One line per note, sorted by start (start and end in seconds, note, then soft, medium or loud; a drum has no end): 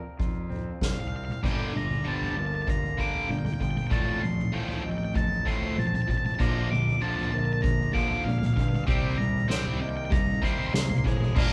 0.00 1.39 C3 medium
0.00 0.49 F3 medium
0.00 1.39 F3 soft
0.00 1.39 A#3 soft
0.00 0.48 C4 medium
0.00 1.39 F4 medium
0.00 1.43 A#4 medium
0.00 0.50 D5 medium
0.00 1.41 A5 medium
0.19 0.71 F2 medium
0.19 1.43 F4 medium
0.19 kick medium
0.19 floor tom medium
0.50 1.10 C4 medium
0.50 0.80 C5 medium
0.50 floor tom medium
0.81 1.33 C2 loud
0.81 1.44 F3 medium
0.81 1.43 C5 medium
0.81 0.92 F5 medium
0.81 kick medium
0.81 snare medium
0.92 1.00 F5 medium
0.97 1.07 F5 medium
0.97 floor tom medium
1.08 1.43 C4 medium
1.08 1.16 F5 medium
1.16 1.24 F5 medium
1.25 1.32 F5 soft
1.25 mid tom medium
1.32 1.40 F5 medium
1.43 1.95 G1 medium
1.43 1.72 G2 medium
1.43 2.98 G2 medium
1.43 3.89 D3 medium
1.43 1.73 D3 medium
1.43 3.89 G3 medium
1.43 1.73 G3 medium
1.43 3.89 A#3 medium
1.43 3.89 F4 medium
1.43 3.89 A#4 medium
1.43 2.05 D5 medium
1.43 1.76 G5 medium
1.43 kick medium
1.43 floor tom medium
1.43 crash loud
1.73 2.02 G2 medium
1.73 3.29 D3 medium
1.73 2.02 D3 medium
1.73 2.07 A#5 medium
1.73 mid tom medium
1.91 floor tom medium
2.04 3.09 G1 medium
2.04 2.34 G2 medium
2.04 2.34 D3 medium
2.04 3.59 F3 medium
2.04 2.35 G3 medium
2.04 2.36 C5 medium
2.04 2.15 A5 medium
2.16 2.22 A5 medium
2.22 2.30 A5 medium
2.22 floor tom medium
2.30 2.38 A5 medium
2.36 2.64 G2 medium
2.36 2.64 D3 medium
2.36 3.26 A#3 medium
2.36 2.98 A#4 medium
2.36 2.46 A5 medium
2.46 2.54 A5 medium
2.55 2.62 A5 medium
2.62 2.69 A5 medium
2.67 2.95 G2 medium
2.67 2.95 D3 medium
2.67 5.15 F4 medium
2.67 3.00 A#5 medium
2.67 kick loud
2.84 floor tom medium
2.97 3.27 G2 medium
2.97 3.27 D3 medium
2.97 3.27 G3 medium
2.97 3.91 A#4 medium
2.97 3.29 F5 medium
2.97 3.31 D6 loud
2.97 kick medium
3.15 floor tom medium
3.28 3.42 G1 loud
3.28 3.57 G2 medium
3.28 3.57 D3 medium
3.28 3.91 A#3 medium
3.28 3.90 D5 medium
3.28 3.38 G5 medium
3.28 mid tom medium
3.39 3.46 G5 medium
3.45 3.53 G5 medium
3.45 floor tom medium
3.45 mid tom medium
3.54 3.62 G5 medium
3.60 3.86 G1 medium
3.60 3.88 G2 medium
3.60 3.88 D3 medium
3.60 4.21 F3 medium
3.60 3.70 G5 medium
3.60 kick medium
3.71 3.77 G5 medium
3.76 3.85 G5 medium
3.76 mid tom medium
3.87 4.20 A2 medium
3.87 5.46 A2 medium
3.87 4.20 F3 medium
3.87 4.20 A3 medium
3.87 3.92 G5 medium
3.91 4.43 A1 medium
3.91 6.37 D#3 medium
3.91 6.38 A3 medium
3.91 6.37 C4 medium
3.91 6.38 F4 medium
3.91 6.37 A4 medium
3.91 4.53 D5 medium
3.91 4.21 A5 medium
3.91 kick loud
3.91 floor tom medium
4.21 4.50 A2 medium
4.21 4.52 F3 medium
4.21 4.50 F3 medium
4.21 4.52 C6 medium
4.21 mid tom medium
4.38 floor tom medium
4.52 5.56 A1 medium
4.52 4.82 A2 medium
4.52 6.06 F3 medium
4.52 4.82 F3 medium
4.52 4.82 A3 medium
4.52 4.84 C5 medium
4.52 4.61 G5 medium
4.62 4.68 G5 medium
4.68 4.75 G5 medium
4.68 floor tom medium
4.76 4.82 G5 medium
4.83 5.12 A2 medium
4.83 5.12 F3 medium
4.83 5.75 C4 medium
4.83 5.46 D#5 medium
4.83 4.90 G5 medium
4.91 4.97 G5 medium
4.98 5.04 G5 medium
5.04 5.12 G5 medium
5.15 5.43 A2 medium
5.15 5.43 F3 medium
5.15 6.39 D#4 medium
5.15 5.48 A5 loud
5.15 kick loud
5.31 floor tom medium
5.46 5.75 A2 medium
5.46 5.75 F3 medium
5.46 5.76 A3 loud
5.46 6.40 A4 medium
5.46 5.76 C5 medium
5.46 5.79 C6 loud
5.46 kick medium
5.62 floor tom medium
5.76 5.90 A1 loud
5.76 6.05 A2 medium
5.76 6.05 F3 medium
5.76 6.39 C4 medium
5.76 6.39 C5 medium
5.76 5.86 A5 medium
5.76 mid tom medium
5.87 5.95 A5 medium
5.93 6.01 A5 medium
5.93 floor tom medium
5.93 mid tom medium
6.02 6.10 A5 medium
6.07 6.35 A1 medium
6.07 6.36 A2 medium
6.07 6.39 F3 medium
6.07 6.36 F3 medium
6.07 6.17 A5 medium
6.07 kick medium
6.18 6.25 A5 medium
6.25 6.34 A5 medium
6.25 mid tom medium
6.35 6.68 A#2 medium
6.35 7.94 A#2 medium
6.35 6.68 D3 medium
6.35 6.68 F3 medium
6.35 7.01 D5 medium
6.35 6.43 A5 medium
6.40 6.92 A#1 loud
6.40 8.86 F3 medium
6.40 8.86 A#3 medium
6.40 8.86 D4 medium
6.40 8.86 F4 medium
6.40 6.70 A#5 loud
6.40 kick loud
6.40 floor tom medium
6.40 crash medium
6.69 6.98 A#2 medium
6.69 8.25 D3 medium
6.69 6.99 D3 medium
6.69 7.03 D6 medium
6.69 mid tom medium
6.87 floor tom medium
7.01 8.05 A#1 medium
7.01 7.30 A#2 medium
7.01 7.31 D3 medium
7.01 8.55 F3 medium
7.01 7.31 F3 medium
7.01 7.33 C5 medium
7.01 7.08 A5 loud
7.08 7.16 A5 medium
7.16 7.23 A5 loud
7.16 floor tom medium
7.23 7.30 A5 medium
7.31 7.60 A#2 medium
7.31 7.60 D3 medium
7.31 8.25 A#3 medium
7.31 7.94 A#4 medium
7.31 7.38 A5 loud
7.38 7.45 A5 medium
7.45 7.52 A5 medium
7.53 7.60 A5 medium
7.62 7.91 A#2 medium
7.62 7.91 D3 medium
7.62 8.87 D4 medium
7.62 7.92 A#5 loud
7.62 kick loud
7.79 floor tom medium
7.93 8.23 A#2 loud
7.93 8.23 D3 loud
7.93 8.24 F3 loud
7.93 8.88 A4 medium
7.93 8.26 F5 medium
7.93 8.26 D6 medium
7.93 kick medium
8.11 floor tom medium
8.24 8.59 A#1 loud
8.24 8.53 A#2 medium
8.24 8.54 D3 medium
8.24 8.90 A#3 medium
8.24 8.86 D5 medium
8.24 8.32 F5 medium
8.24 mid tom medium
8.32 8.38 F5 medium
8.39 8.46 F5 medium
8.39 floor tom loud
8.39 mid tom medium
8.46 8.54 F5 medium
8.54 8.83 G2 medium
8.54 8.84 A#2 medium
8.54 8.84 D3 medium
8.54 8.88 F3 medium
8.54 8.60 F5 medium
8.54 kick medium
8.61 8.68 F5 medium
8.69 8.75 F5 medium
8.73 8.83 F5 medium
8.73 mid tom medium
8.87 9.40 C2 loud
8.87 9.16 C3 medium
8.87 10.43 C3 medium
8.87 11.33 D#3 medium
8.87 9.17 G3 medium
8.87 11.33 A#3 medium
8.87 9.17 C4 loud
8.87 11.33 C4 medium
8.87 11.33 G4 medium
8.87 9.50 D5 medium
8.87 9.17 G5 loud
8.87 kick loud
8.87 floor tom medium
9.17 9.46 C3 medium
9.17 9.47 G3 medium
9.17 9.46 G3 medium
9.17 9.47 A#5 medium
9.17 mid tom medium
9.35 floor tom medium
9.48 10.53 C2 medium
9.48 9.78 C3 medium
9.48 9.78 G3 medium
9.48 11.03 G3 medium
9.48 9.79 C4 loud
9.48 9.81 C5 medium
9.48 9.55 G5 medium
9.48 snare medium
9.56 9.64 G5 medium
9.65 9.73 G5 medium
9.65 floor tom medium
9.73 9.81 G5 medium
9.80 10.08 C3 medium
9.80 10.08 G3 medium
9.80 10.72 A#3 medium
9.80 10.43 D#5 medium
9.80 9.88 G5 medium
9.89 9.96 G5 medium
9.97 10.05 G5 medium
10.05 10.13 G5 medium
10.10 10.39 C3 medium
10.10 10.39 G3 medium
10.10 11.36 D#4 medium
10.10 10.41 A#5 loud
10.10 kick loud
10.27 floor tom medium
10.42 10.72 C3 loud
10.42 10.72 G3 loud
10.42 10.72 C4 loud
10.42 11.35 A#4 medium
10.42 10.72 C5 medium
10.42 10.52 C6 loud
10.42 kick medium
10.52 10.59 C6 medium
10.59 10.67 C6 loud
10.59 floor tom medium
10.67 10.75 C6 medium
10.73 11.05 C2 loud
10.73 11.01 C3 medium
10.73 11.01 G3 medium
10.73 11.36 A#3 medium
10.73 11.36 C5 medium
10.73 10.82 C6 medium
10.73 snare medium
10.82 10.89 C6 medium
10.90 10.97 C6 medium
10.90 floor tom loud
10.90 mid tom medium
10.98 11.06 C6 medium
11.04 11.31 A1 loud
11.04 11.33 C3 medium
11.04 11.36 G3 medium
11.04 11.33 G3 medium
11.04 11.38 D#5 medium
11.04 11.35 C6 medium
11.04 kick medium
11.22 mid tom medium
11.34 11.53 G1 loud
11.34 11.53 G2 medium
11.34 11.53 D3 medium
11.34 11.53 G3 medium
11.34 11.53 G3 loud
11.34 11.53 A#3 medium
11.34 11.53 A#3 loud
11.34 11.53 D4 loud
11.34 11.53 F4 medium
11.34 11.53 A#4 medium
11.34 11.53 D5 loud
11.34 11.53 F5 loud
11.34 kick loud
11.34 crash loud